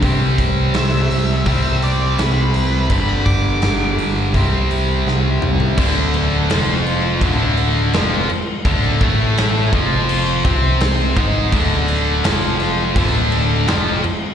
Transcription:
<<
  \new Staff \with { instrumentName = "Lead electric guitar" } { \time 4/4 \key c \lydian \tempo 4 = 84 r4 e''4. d''8 b'8 b'8 | b''16 b''16 d'''2. r8 | r1 | r1 |
r1 | }
  \new Staff \with { instrumentName = "Distorted electric guitar" } { \clef bass \time 4/4 \key c \lydian <c g c'>2 <c g c'>2 | <g, d g>2 <c g c'>2 | <d, d>4 <f, f>4 <d, d>4 <f, f>8 r8 | <d, d>8 <a, a>4 <f, f>4 <c c'>4 <gis, gis>8 |
<d, d>4 <f, f>4 <d, d>4 <f, f>8 r8 | }
  \new Staff \with { instrumentName = "Picked electric bass" } { \clef bass \time 4/4 \key c \lydian c,8 c,8 c,8 c,8 c,8 c,8 c,8 c,8 | g,,8 g,,8 g,,8 g,,8 c,8 c,8 c,8 c,8 | d,,4 f,,4 d,,4 f,,8 r8 | d,,8 a,,4 f,,4 c,4 gis,,8 |
d,,4 f,,4 d,,4 f,,8 r8 | }
  \new DrumStaff \with { instrumentName = "Drums" } \drummode { \time 4/4 <hho bd>8 <hho bd>8 <hho sn>8 hho8 <hho bd>8 hho8 <hho sn>8 hho8 | <hho bd>8 <hho bd>8 <hho sn>8 hho8 <hho bd>8 hho8 sn8 toml16 tomfh16 | <cymc bd>8 cymc8 <cymc sn>8 cymc8 <cymc bd>8 cymc8 <cymc sn>8 cymc8 | <cymc bd>8 <cymc bd>8 <cymc sn>8 <cymc bd>8 cymc8 <cymc bd>8 <cymc sn>8 <cymc bd>8 |
<cymc bd>8 cymc8 <cymc sn>8 <cymc sn>8 <cymc bd>8 cymc8 <cymc sn>8 cymc8 | }
>>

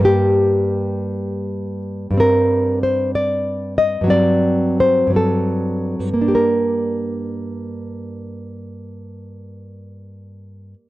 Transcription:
\new Staff \with { instrumentName = "Nylon-string guitar" } { \time 6/8 \key g \minor \tempo 4. = 54 << { g'2~ g'8 r8 | bes'4 c''8 d''4 ees''8 | d''4 c''8 a'4. | <g, bes d' g' bes'>2.~ |
<g, bes d' g' bes'>2. | } \\ { <g, g bes>2. | <g, g c'>2. | <g, fis c'>4. <g, fis c'>4. | r2. |
r2. | } >> }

